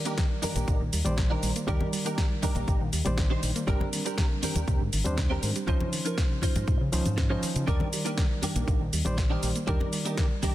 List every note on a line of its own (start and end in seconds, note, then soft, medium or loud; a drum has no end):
0.00 1.03 D#3 medium
0.00 1.02 G3 loud
0.00 1.03 A#4 loud
0.00 1.03 D5 medium
0.05 0.10 A#3 medium
0.05 0.24 D4 medium
0.05 0.24 D#4 medium
0.05 0.25 G4 medium
0.05 0.25 A#4 medium
0.05 closed hi-hat medium
0.05 shaker soft
0.18 0.23 D3 medium
0.18 kick loud
0.18 snare loud
0.18 closed hi-hat medium
0.18 shaker soft
0.30 0.35 D#3 medium
0.42 0.50 G3 medium
0.42 0.80 D4 medium
0.42 0.81 D#4 medium
0.42 0.81 G4 medium
0.42 0.81 A#4 medium
0.42 open hi-hat loud
0.42 high conga medium
0.42 shaker medium
0.56 0.63 A#1 medium
0.56 0.58 A#3 loud
0.56 closed hi-hat medium
0.56 muted conga medium
0.56 shaker soft
0.68 0.76 A#1 medium
0.68 0.73 D3 medium
0.68 kick loud
0.68 closed hi-hat medium
0.68 shaker soft
0.80 0.88 A#1 medium
0.80 0.85 D#3 loud
0.93 1.01 D#2 medium
0.93 0.98 G3 medium
0.93 open hi-hat loud
0.93 shaker medium
1.05 1.35 A#1 medium
1.05 1.65 D#3 medium
1.05 1.64 G3 loud
1.05 1.10 A#3 medium
1.05 1.65 C5 loud
1.05 1.65 D5 medium
1.05 closed hi-hat medium
1.05 high conga medium
1.05 shaker soft
1.17 1.23 D3 medium
1.17 muted clean electric guitar stroke medium
1.17 kick loud
1.17 snare loud
1.17 closed hi-hat medium
1.17 shaker soft
1.30 1.35 D#3 medium
1.30 1.49 D4 loud
1.30 1.49 D#4 loud
1.30 1.49 G4 loud
1.30 1.50 A#4 loud
1.43 1.51 A#1 loud
1.43 1.50 G3 medium
1.43 open hi-hat loud
1.43 shaker medium
1.56 1.58 A#3 loud
1.56 closed hi-hat medium
1.56 shaker soft
1.67 1.76 D#2 loud
1.67 1.73 D3 medium
1.67 3.03 D#3 medium
1.67 3.02 G3 loud
1.67 1.87 D4 loud
1.67 1.87 D#4 loud
1.67 1.87 G4 loud
1.67 1.87 A#4 loud
1.67 3.03 A#4 loud
1.67 3.03 D5 medium
1.67 kick loud
1.67 closed hi-hat medium
1.67 shaker soft
1.81 1.85 D#3 loud
1.81 muted conga medium
1.81 high conga medium
1.93 1.98 G3 medium
1.93 open hi-hat loud
1.93 shaker medium
2.05 2.10 A#3 medium
2.05 2.24 D4 medium
2.05 2.24 D#4 medium
2.05 2.25 G4 medium
2.05 2.25 A#4 loud
2.05 closed hi-hat medium
2.05 shaker soft
2.18 2.23 D3 medium
2.18 kick loud
2.18 snare loud
2.18 closed hi-hat medium
2.18 shaker soft
2.31 2.35 D#3 medium
2.42 2.50 G3 medium
2.42 2.80 D4 medium
2.42 2.81 D#4 medium
2.42 2.81 G4 medium
2.42 2.81 A#4 loud
2.42 muted fingered electric bass stroke soft
2.42 kick medium
2.42 open hi-hat loud
2.42 high conga medium
2.42 shaker medium
2.55 2.63 A#1 loud
2.55 2.58 A#3 loud
2.55 closed hi-hat medium
2.55 muted conga medium
2.55 shaker soft
2.68 2.76 A#1 medium
2.68 2.73 D3 medium
2.68 kick loud
2.68 closed hi-hat medium
2.68 shaker soft
2.80 2.88 A#1 medium
2.80 2.85 D#3 loud
2.93 3.01 D#2 medium
2.93 2.98 G3 medium
2.93 open hi-hat loud
2.93 shaker medium
3.05 3.35 A#1 medium
3.05 3.65 D#3 medium
3.05 3.65 G3 loud
3.05 3.10 A#3 medium
3.05 3.66 C5 loud
3.05 3.65 D5 medium
3.05 closed hi-hat medium
3.05 high conga medium
3.05 shaker soft
3.17 3.23 D3 medium
3.17 muted clean electric guitar stroke medium
3.17 kick loud
3.17 snare loud
3.17 closed hi-hat medium
3.17 shaker soft
3.30 3.35 D#3 medium
3.30 3.49 D4 loud
3.30 3.49 D#4 loud
3.30 3.50 G4 loud
3.30 3.50 C5 loud
3.43 3.51 A#1 loud
3.43 3.50 G3 medium
3.43 open hi-hat loud
3.43 shaker medium
3.55 3.58 A#3 loud
3.55 closed hi-hat medium
3.55 shaker soft
3.67 3.76 G#1 loud
3.67 3.73 C3 medium
3.67 5.02 G3 loud
3.67 3.86 C4 loud
3.67 5.03 C4 medium
3.67 3.87 D4 loud
3.67 5.03 D4 medium
3.67 3.87 G4 loud
3.67 3.87 A#4 loud
3.67 5.03 A#4 loud
3.67 kick loud
3.67 closed hi-hat medium
3.67 shaker soft
3.81 3.85 D3 loud
3.81 muted conga medium
3.81 high conga loud
3.93 3.98 D#3 medium
3.93 open hi-hat loud
3.93 shaker medium
4.05 4.10 G3 medium
4.05 4.24 C4 medium
4.05 4.24 D4 medium
4.05 4.24 G4 medium
4.05 4.25 A#4 medium
4.05 closed hi-hat medium
4.05 shaker soft
4.18 4.23 C3 medium
4.18 kick loud
4.18 snare loud
4.18 closed hi-hat medium
4.18 shaker soft
4.31 4.35 D3 medium
4.42 4.50 D#3 medium
4.42 4.80 C4 medium
4.42 4.81 D4 medium
4.42 4.81 G4 medium
4.42 4.81 A#4 medium
4.42 open hi-hat loud
4.42 high conga medium
4.42 shaker medium
4.55 4.63 D#2 medium
4.55 4.58 G3 loud
4.55 closed hi-hat medium
4.55 muted conga medium
4.55 shaker soft
4.68 4.76 D#2 medium
4.68 4.73 C3 medium
4.68 kick loud
4.68 closed hi-hat medium
4.68 shaker soft
4.80 4.88 G#2 loud
4.80 4.85 D3 loud
4.93 5.01 G#1 medium
4.93 4.98 D#3 medium
4.93 open hi-hat loud
4.93 shaker medium
5.05 5.35 D#2 medium
5.05 5.64 G3 medium
5.05 5.10 G3 medium
5.05 5.65 C4 medium
5.05 5.65 D4 medium
5.05 5.65 C5 loud
5.05 closed hi-hat medium
5.05 high conga loud
5.05 shaker soft
5.17 5.23 C3 medium
5.17 muted clean electric guitar stroke medium
5.17 kick loud
5.17 snare loud
5.17 closed hi-hat medium
5.17 shaker soft
5.30 5.35 D3 medium
5.30 5.49 C4 loud
5.30 5.49 D4 loud
5.30 5.49 G4 loud
5.30 5.50 A#4 loud
5.43 5.51 G#2 loud
5.43 5.50 D#3 medium
5.43 open hi-hat loud
5.43 shaker medium
5.56 5.58 G3 loud
5.56 closed hi-hat medium
5.56 shaker soft
5.67 5.76 C#2 loud
5.67 5.73 C3 medium
5.67 6.90 F3 loud
5.67 5.86 C#4 loud
5.67 6.90 C#4 medium
5.67 5.87 D#4 loud
5.67 6.91 D#4 medium
5.67 5.87 F4 loud
5.67 5.87 C5 loud
5.67 6.91 C5 loud
5.67 kick loud
5.67 closed hi-hat medium
5.67 shaker soft
5.81 5.85 C#3 loud
5.81 muted conga medium
5.81 high conga medium
5.93 5.98 D#3 medium
5.93 open hi-hat loud
5.93 shaker medium
6.05 6.10 F3 medium
6.05 6.24 C#4 medium
6.05 6.24 D#4 medium
6.05 6.24 F4 medium
6.05 6.25 A#4 medium
6.05 closed hi-hat medium
6.05 shaker soft
6.18 6.23 C3 medium
6.18 kick loud
6.18 snare loud
6.18 closed hi-hat medium
6.18 shaker soft
6.31 6.35 C#3 medium
6.42 6.50 D#3 medium
6.42 6.80 C#4 medium
6.42 6.80 D#4 medium
6.42 6.81 F4 medium
6.42 6.81 C5 medium
6.42 muted fingered electric bass stroke soft
6.42 kick medium
6.42 open hi-hat loud
6.42 high conga medium
6.42 shaker medium
6.56 6.63 G#2 medium
6.56 6.58 F3 loud
6.56 closed hi-hat medium
6.56 muted conga medium
6.56 shaker soft
6.68 6.76 G#2 medium
6.68 6.73 C3 medium
6.68 kick loud
6.68 closed hi-hat medium
6.68 shaker soft
6.81 6.88 C#3 medium
6.81 6.85 C#3 loud
6.92 7.01 C#2 medium
6.92 6.98 D#3 medium
6.92 7.27 F3 medium
6.92 7.27 C#4 medium
6.92 7.28 D#4 medium
6.92 7.28 C5 loud
6.92 open hi-hat loud
6.92 shaker medium
7.06 7.35 G#2 medium
7.06 7.10 F3 medium
7.06 closed hi-hat medium
7.06 high conga loud
7.06 shaker soft
7.17 7.23 C3 medium
7.17 muted clean electric guitar stroke medium
7.17 kick loud
7.17 snare loud
7.17 closed hi-hat medium
7.17 shaker soft
7.30 7.35 C#3 medium
7.30 7.65 F3 medium
7.30 7.49 C#4 loud
7.30 7.65 C#4 medium
7.30 7.49 D#4 loud
7.30 7.65 D#4 medium
7.30 7.49 F4 loud
7.30 7.65 C5 loud
7.30 7.50 C5 loud
7.43 7.50 D#3 medium
7.43 muted fingered electric bass stroke soft
7.43 open hi-hat loud
7.43 shaker medium
7.56 7.63 C#3 medium
7.56 7.58 F3 loud
7.56 closed hi-hat medium
7.56 shaker soft
7.67 7.76 D#2 loud
7.67 7.73 D3 medium
7.67 9.03 D#3 medium
7.67 9.02 G3 loud
7.67 7.86 D4 loud
7.67 7.87 D#4 loud
7.67 7.87 G4 loud
7.67 7.87 A#4 loud
7.67 9.03 A#4 loud
7.67 9.02 D5 medium
7.67 kick loud
7.67 closed hi-hat medium
7.67 shaker soft
7.80 7.85 D#3 loud
7.80 muted conga medium
7.80 high conga medium
7.93 7.98 G3 medium
7.93 open hi-hat loud
7.93 shaker medium
8.05 8.10 A#3 medium
8.05 8.24 D4 medium
8.05 8.24 D#4 medium
8.05 8.24 G4 medium
8.05 8.25 A#4 medium
8.05 closed hi-hat medium
8.05 shaker soft
8.18 8.23 D3 medium
8.18 kick loud
8.18 snare loud
8.18 closed hi-hat medium
8.18 shaker soft
8.31 8.35 D#3 medium
8.42 8.50 G3 medium
8.42 8.80 D4 medium
8.42 8.81 D#4 medium
8.42 8.81 G4 medium
8.42 8.81 A#4 loud
8.42 open hi-hat loud
8.42 high conga medium
8.42 shaker medium
8.56 8.63 A#1 medium
8.56 8.58 A#3 loud
8.56 closed hi-hat medium
8.56 muted conga medium
8.56 shaker soft
8.68 8.76 A#1 medium
8.68 8.73 D3 medium
8.68 kick loud
8.68 closed hi-hat medium
8.68 shaker soft
8.80 8.88 A#1 medium
8.80 8.85 D#3 loud
8.93 9.01 D#2 medium
8.93 8.98 G3 medium
8.93 open hi-hat loud
8.93 shaker medium
9.05 9.35 A#1 medium
9.05 9.65 D#3 medium
9.05 9.64 G3 loud
9.05 9.10 A#3 medium
9.05 9.65 C5 loud
9.05 9.65 D5 medium
9.05 closed hi-hat medium
9.05 high conga loud
9.05 shaker soft
9.17 9.23 D3 medium
9.17 muted clean electric guitar stroke medium
9.17 kick loud
9.17 snare loud
9.17 closed hi-hat medium
9.17 shaker soft
9.30 9.35 D#3 medium
9.30 9.49 D4 loud
9.30 9.49 D#4 loud
9.30 9.50 G4 loud
9.30 9.50 A#4 loud
9.43 9.51 A#1 loud
9.43 9.50 G3 medium
9.43 open hi-hat loud
9.43 shaker medium
9.56 9.58 A#3 loud
9.56 closed hi-hat medium
9.56 shaker soft
9.67 9.76 D#2 loud
9.67 9.73 D3 medium
9.67 10.55 D#3 medium
9.67 10.55 G3 loud
9.67 9.86 D4 loud
9.67 9.87 D#4 loud
9.67 9.87 G4 loud
9.67 9.87 A#4 loud
9.67 10.55 A#4 loud
9.67 10.55 D5 medium
9.67 kick loud
9.67 closed hi-hat medium
9.67 shaker soft
9.80 9.85 D#3 loud
9.80 muted conga medium
9.80 high conga medium
9.93 9.98 G3 medium
9.93 open hi-hat loud
9.93 shaker medium
10.05 10.10 A#3 medium
10.05 10.24 D4 medium
10.05 10.24 D#4 medium
10.05 10.25 G4 medium
10.05 10.25 A#4 medium
10.05 closed hi-hat medium
10.05 shaker soft
10.17 10.23 D3 medium
10.17 kick loud
10.17 snare loud
10.17 closed hi-hat medium
10.17 shaker soft
10.31 10.35 D#3 medium
10.43 10.50 G3 medium
10.43 10.55 D4 medium
10.43 10.55 D#4 medium
10.43 10.55 G4 medium
10.43 10.55 A#4 loud
10.43 muted fingered electric bass stroke soft
10.43 kick medium
10.43 open hi-hat loud
10.43 high conga medium
10.43 shaker medium